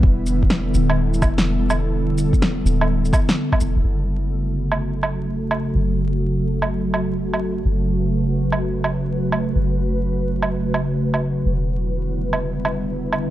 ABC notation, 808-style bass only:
X:1
M:4/4
L:1/16
Q:"Swing 16ths" 1/4=126
K:F#phr
V:1 name="808-style bass" clef=bass
E,,,6 D,,,4 E,,,6- | E,,,6 D,,,4 z4 E,,, E,,, | F,,,16 | F,,,16 |
F,,,16 | F,,,16 | E,,,16 |]